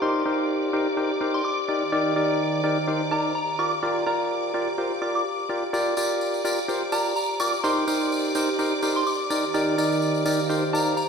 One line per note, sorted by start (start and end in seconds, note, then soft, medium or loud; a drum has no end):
0.00 0.23 D#4 loud
0.00 7.63 G4 medium
0.00 0.23 G4 medium
0.00 0.23 A#4 medium
0.00 9.30 C5 medium
0.00 0.23 C5 loud
0.00 5.72 D5 medium
0.00 9.30 F5 medium
0.00 11.09 A#5 medium
0.00 0.39 C6 medium
0.00 5.72 D6 medium
0.26 0.71 D#4 medium
0.26 0.71 G4 medium
0.26 0.71 A#4 medium
0.26 0.71 C5 medium
0.73 0.88 D#4 medium
0.73 0.88 G4 medium
0.73 0.88 A#4 medium
0.73 0.88 C5 loud
0.97 1.11 D#4 medium
0.97 1.11 G4 medium
0.97 1.11 A#4 medium
0.97 1.11 C5 medium
1.21 1.42 D#4 medium
1.21 1.42 G4 medium
1.21 1.42 A#4 medium
1.21 1.42 C5 medium
1.34 1.43 C6 medium
1.45 1.74 D6 medium
1.68 3.59 D#3 medium
1.68 1.83 D#4 medium
1.68 1.83 G4 medium
1.68 1.83 A#4 medium
1.68 1.83 D5 medium
1.92 2.14 D#4 loud
1.92 2.14 G4 medium
1.92 2.14 A#4 medium
1.92 2.14 D5 loud
2.16 2.61 D#4 medium
2.16 2.61 G4 medium
2.16 2.61 A#4 medium
2.16 2.61 D5 medium
2.64 2.78 D#4 medium
2.64 2.78 G4 medium
2.64 2.78 A#4 medium
2.64 2.78 D5 loud
2.88 3.02 D#4 medium
2.88 3.02 G4 medium
2.88 3.02 A#4 medium
2.88 3.02 C5 medium
3.11 3.32 D#4 medium
3.11 3.32 G4 medium
3.11 3.32 A#4 medium
3.11 3.32 D5 medium
3.11 3.30 A#5 medium
3.35 3.54 A#5 medium
3.59 3.73 F4 medium
3.59 3.73 G4 medium
3.59 3.73 A#4 medium
3.59 3.73 D5 medium
3.59 3.81 D6 medium
3.83 4.04 F4 loud
3.83 4.04 G4 medium
3.83 4.04 A#4 medium
3.83 4.04 D5 loud
4.07 4.52 F4 medium
4.07 4.52 G4 medium
4.07 4.52 A#4 medium
4.07 4.52 D5 medium
4.07 4.25 A#5 medium
4.54 4.69 F4 medium
4.54 4.69 G4 medium
4.54 4.69 A#4 medium
4.54 4.69 D5 loud
4.78 4.92 F4 medium
4.78 4.92 G4 medium
4.78 4.92 A#4 medium
4.78 4.92 C5 medium
5.02 5.23 F4 medium
5.02 5.23 G4 medium
5.02 5.23 A#4 medium
5.02 5.23 D5 medium
5.02 5.10 D6 medium
5.15 5.22 D6 medium
5.49 5.64 F4 medium
5.49 5.64 G4 medium
5.49 5.64 A#4 medium
5.49 5.64 D5 medium
5.73 5.95 F4 loud
5.73 5.95 G4 medium
5.73 5.95 A#4 medium
5.73 5.95 D5 loud
5.73 11.09 D5 medium
5.73 11.09 D6 medium
5.73 tambourine soft
5.97 6.42 F4 medium
5.97 6.42 G4 medium
5.97 6.42 A#4 medium
5.97 6.42 D5 medium
5.97 tambourine loud
6.10 tambourine soft
6.21 tambourine soft
6.34 tambourine soft
6.45 6.59 F4 medium
6.45 6.59 G4 medium
6.45 6.59 A#4 medium
6.45 6.59 D5 loud
6.45 tambourine medium
6.58 tambourine soft
6.68 6.83 F4 medium
6.68 6.83 G4 medium
6.68 6.83 A#4 medium
6.68 6.83 C5 medium
6.68 tambourine medium
6.92 7.13 F4 medium
6.92 7.13 G4 medium
6.92 7.13 A#4 medium
6.92 7.13 D5 medium
6.92 7.11 A#5 medium
6.92 tambourine medium
7.06 tambourine soft
7.16 7.35 A#5 medium
7.16 tambourine medium
7.40 7.54 F4 medium
7.40 7.54 G4 medium
7.40 7.54 A#4 medium
7.40 7.54 D5 medium
7.40 7.62 D6 medium
7.40 tambourine loud
7.53 tambourine soft
7.64 7.85 D#4 loud
7.64 11.09 G4 medium
7.64 7.85 G4 medium
7.64 7.85 A#4 medium
7.64 7.85 C5 loud
7.64 8.01 C6 medium
7.64 tambourine medium
7.88 8.33 D#4 medium
7.88 8.33 G4 medium
7.88 8.33 A#4 medium
7.88 8.33 C5 medium
7.88 tambourine medium
8.02 tambourine soft
8.12 tambourine soft
8.25 tambourine soft
8.35 8.50 D#4 medium
8.35 8.50 G4 medium
8.35 8.50 A#4 medium
8.35 8.50 C5 loud
8.35 tambourine medium
8.49 tambourine soft
8.59 8.73 D#4 medium
8.59 8.73 G4 medium
8.59 8.73 A#4 medium
8.59 8.73 C5 medium
8.59 tambourine soft
8.82 9.04 D#4 medium
8.82 9.04 G4 medium
8.82 9.04 A#4 medium
8.82 9.04 C5 medium
8.82 tambourine medium
8.96 9.04 C6 medium
8.96 tambourine soft
9.07 9.36 D6 medium
9.07 tambourine soft
9.30 11.09 D#3 medium
9.30 9.45 D#4 medium
9.30 9.45 G4 medium
9.30 9.45 A#4 medium
9.30 9.45 D5 medium
9.30 tambourine medium
9.44 tambourine soft
9.53 9.76 D#4 loud
9.53 9.76 G4 medium
9.53 9.76 A#4 medium
9.53 11.09 C5 medium
9.53 9.76 D5 loud
9.53 tambourine medium
9.77 10.23 D#4 medium
9.77 10.23 G4 medium
9.77 10.23 A#4 medium
9.77 10.23 D5 medium
9.77 11.09 F5 medium
9.77 tambourine medium
9.92 tambourine soft
10.02 tambourine medium
10.15 tambourine soft
10.26 10.40 D#4 medium
10.26 10.40 G4 medium
10.26 10.40 A#4 medium
10.26 10.40 D5 loud
10.26 tambourine medium
10.39 tambourine soft
10.49 10.64 D#4 medium
10.49 10.64 G4 medium
10.49 10.64 A#4 medium
10.49 10.64 C5 medium
10.49 tambourine soft
10.73 10.94 D#4 medium
10.73 10.94 G4 medium
10.73 10.94 A#4 medium
10.73 10.94 D5 medium
10.73 10.92 A#5 medium
10.73 tambourine medium
10.87 tambourine soft
10.97 11.09 A#5 medium
10.97 tambourine medium